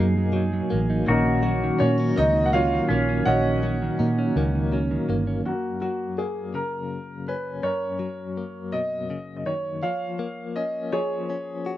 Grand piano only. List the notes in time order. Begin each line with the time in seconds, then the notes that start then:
1.09 A#3 C#4 D#4 A#4
1.80 C#4 C#5
2.17 D#4 D#5
2.46 F#5
2.53 F4 C#5 F5
3.25 F#4 C#5 D#5 F#5
5.46 A#3 F#4
5.81 F#4
6.18 G#4
6.55 A#4
7.28 B4
7.63 A#4 C#5
8.72 D#5
9.37 D#5
9.46 C#5
9.83 C#5 F5
10.56 D#5
10.92 G#4 C#5